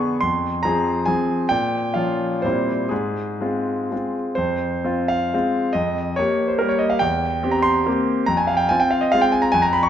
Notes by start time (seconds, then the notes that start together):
Already playing: D3 B3 G#4 C#6
0.21 F2 C6
0.63 F3 C4 G#4 A#5
1.06 F3 C4 G#4 G#5
1.49 A#2 G5
1.94 F3 C#4 F4 F5
2.42 A#2 G3 C4 E4 C5
2.89 G#2 G#4
3.41 G#3 C4 F4
3.92 G#3 C4 F4
4.35 F2 C5
4.84 C4 F4
5.08 F5
5.34 G#3 C4 F4
5.73 F2 D#5
6.16 A#3 G4 C#5
6.48 C5
6.59 G3 A#3 G4 A#4
6.69 C#5
6.79 D#5
6.90 F5
6.99 E2 G5
7.43 C4 G4
7.51 A#5
7.62 C6
7.86 A#3 C4 G4
8.26 F2 A#5
8.37 G#5
8.47 F5
8.57 G5
8.69 C4 F4 G#5
8.80 G5
8.91 F5
9.01 D#5
9.12 G#3 C4 F4 F5
9.21 G5
9.32 G#5
9.42 A#5
9.52 F2 G#5
9.62 A#5
9.73 B5
9.83 C#6